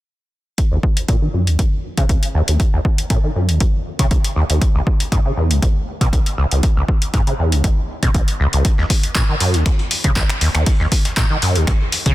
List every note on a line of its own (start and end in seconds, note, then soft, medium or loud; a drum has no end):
0.58 kick loud
0.58 closed hi-hat medium
0.72 0.78 D#2 medium
0.83 kick medium
0.97 closed hi-hat soft
1.09 1.16 A#2 medium
1.09 kick loud
1.09 closed hi-hat medium
1.22 1.29 D#3 medium
1.34 1.49 F#2 medium
1.47 1.57 D#2 medium
1.47 closed hi-hat soft
1.59 1.63 D#2 medium
1.59 kick loud
1.59 closed hi-hat medium
1.98 2.04 C#3 medium
1.98 kick medium
1.98 closed hi-hat soft
2.09 2.17 C#2 medium
2.09 kick loud
2.09 closed hi-hat medium
2.23 closed hi-hat medium
2.35 2.42 D#2 loud
2.48 2.58 D#2 medium
2.48 closed hi-hat soft
2.60 kick loud
2.60 closed hi-hat medium
2.73 2.80 D#2 loud
2.85 kick medium
2.98 closed hi-hat soft
3.10 3.18 A#2 medium
3.10 kick loud
3.10 closed hi-hat medium
3.24 3.30 D#3 medium
3.35 3.50 F#2 medium
3.49 3.59 D#2 medium
3.49 closed hi-hat soft
3.60 3.65 D#2 medium
3.60 kick loud
3.60 closed hi-hat medium
3.99 4.06 C#3 loud
3.99 kick medium
3.99 closed hi-hat soft
4.11 4.18 C#2 medium
4.11 kick loud
4.11 closed hi-hat medium
4.24 closed hi-hat medium
4.36 4.44 D#2 loud
4.50 4.59 D#2 medium
4.50 closed hi-hat soft
4.62 kick loud
4.62 closed hi-hat medium
4.75 4.81 C#2 loud
4.87 kick medium
5.00 closed hi-hat soft
5.12 5.19 G#2 medium
5.12 kick loud
5.12 closed hi-hat medium
5.25 5.32 C#3 medium
5.37 5.52 E2 medium
5.51 5.60 C#2 medium
5.51 closed hi-hat soft
5.62 5.67 C#2 medium
5.62 kick loud
5.62 closed hi-hat medium
6.01 6.08 B2 loud
6.01 kick medium
6.01 closed hi-hat soft
6.13 6.20 B1 medium
6.13 kick loud
6.13 closed hi-hat medium
6.26 closed hi-hat medium
6.38 6.45 C#2 loud
6.51 6.61 C#2 medium
6.51 closed hi-hat soft
6.63 kick loud
6.63 closed hi-hat medium
6.77 6.83 C#2 loud
6.88 kick medium
7.02 closed hi-hat soft
7.14 7.21 G#2 loud
7.14 kick loud
7.14 closed hi-hat medium
7.27 7.34 C#3 medium
7.27 closed hi-hat soft
7.39 7.54 E2 medium
7.52 7.62 C#2 medium
7.52 closed hi-hat soft
7.64 7.69 C#2 medium
7.64 kick loud
7.64 closed hi-hat medium
8.03 8.09 B2 loud
8.03 kick medium
8.03 closed hi-hat soft
8.14 8.22 B1 medium
8.14 kick loud
8.14 closed hi-hat medium
8.28 closed hi-hat medium
8.40 8.47 C#2 loud
8.53 8.63 C#2 medium
8.53 closed hi-hat soft
8.65 kick loud
8.65 closed hi-hat medium
8.78 8.85 D#2 loud
8.78 snare soft
8.90 kick medium
8.90 closed hi-hat medium
8.90 open hi-hat medium
9.03 closed hi-hat soft
9.15 9.23 A#2 medium
9.15 kick loud
9.15 snare loud
9.15 clap loud
9.15 closed hi-hat medium
9.29 9.35 D#3 medium
9.40 9.55 F#2 medium
9.40 closed hi-hat medium
9.40 open hi-hat medium
9.54 9.64 D#2 medium
9.54 snare soft
9.54 closed hi-hat soft
9.66 finger snap medium
9.66 kick loud
9.66 closed hi-hat medium
9.79 closed hi-hat soft
9.91 closed hi-hat medium
9.91 open hi-hat loud
10.04 10.11 C#3 medium
10.04 kick medium
10.04 closed hi-hat soft
10.16 10.24 C#2 medium
10.16 kick loud
10.16 snare loud
10.16 clap loud
10.16 closed hi-hat medium
10.29 finger snap medium
10.29 closed hi-hat medium
10.41 10.49 D#2 medium
10.41 closed hi-hat medium
10.41 open hi-hat medium
10.55 10.65 D#2 medium
10.55 finger snap medium
10.55 snare soft
10.55 closed hi-hat soft
10.66 kick loud
10.66 closed hi-hat medium
10.66 open hi-hat medium
10.80 10.87 D#2 loud
10.80 snare soft
10.92 kick medium
10.92 closed hi-hat medium
10.92 open hi-hat medium
11.05 snare soft
11.05 closed hi-hat soft
11.17 11.24 A#2 medium
11.17 kick loud
11.17 snare loud
11.17 clap loud
11.17 closed hi-hat medium
11.30 11.37 D#3 medium
11.42 11.57 F#2 medium
11.42 closed hi-hat medium
11.42 open hi-hat medium
11.56 11.65 D#2 medium
11.56 closed hi-hat soft
11.67 finger snap medium
11.67 kick loud
11.67 closed hi-hat medium
11.92 closed hi-hat medium
11.92 open hi-hat medium
12.06 12.12 C#3 loud
12.06 kick medium
12.06 closed hi-hat soft